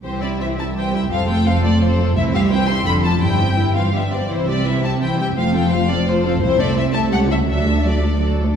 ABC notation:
X:1
M:3/4
L:1/8
Q:1/4=169
K:C
V:1 name="Violin section"
c d e a g g | f g f d c2 | e f g c' b a | g3 f e d |
c d e a g g | f g f d c2 | [K:Dmix] c d e a f e | e2 d2 z2 |]
V:2 name="Violin section"
[Gc] [Ee] [Gc] [Ee] [Gc] [Ee] | [Ac] [FA] [Ac] [FA] [Ac] [FA] | [Ec] [Ge] [Ec] [Ge] [FA] [DF] | [Ec] [Ge] E F G c |
[Ec] [Ge] [Ec] [Ge] [Ec] [Ge] | c [Af] c [Af] c [Af] | [K:Dmix] c [Ae] c [Ae] [A^c] [Ac] | [Ad] [Ad] [Ad] [Ad] [Ad] [Ad] |]
V:3 name="Viola section"
[E,C] [G,E] [E,C] [G,E] [E,C] [G,E] | [F,C] A, [F,C] A, [F,C] A, | [E,C] [G,E] [E,C] [G,E] [D,D] [F,F] | [G,E] [E,C] [G,E] [E,C] [B,D] [G,B,] |
[E,E] [G,C] [E,E] [G,C] [E,E] [G,C] | [A,F] [F,C] [A,F] [F,C] [A,F] [F,C] | [K:Dmix] [CE] [A,C] [CE] [A,C] [G,G] [A,E] | [F,F] [A,D] [F,F] [A,D] [F,F] [A,D] |]
V:4 name="Cello section" clef=bass
C,,6 | F,,6 | C,,4 F,,2 | G,,4- G,, z |
C,6 | F,,6 | [K:Dmix] C,,4 ^C,,2 | D,,4- D,, z |]
V:5 name="Double bass section" clef=bass
C,,6 | F,,,6 | C,,4 F,,,2 | G,,,4- G,,, z |
C,,6 | F,,,6 | [K:Dmix] C,,4 ^C,,2 | D,,4- D,, z |]